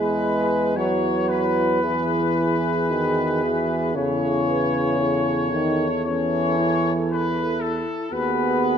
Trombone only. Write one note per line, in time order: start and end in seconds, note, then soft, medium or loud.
0.00 0.78 G#3 medium
0.77 1.83 F#3 medium
1.83 2.92 E3 medium
2.91 3.45 D#3 medium
3.43 3.97 E3 medium
3.95 5.52 C#3 medium
5.52 5.86 D#3 medium
6.05 7.57 E3 medium
8.12 8.78 B3 medium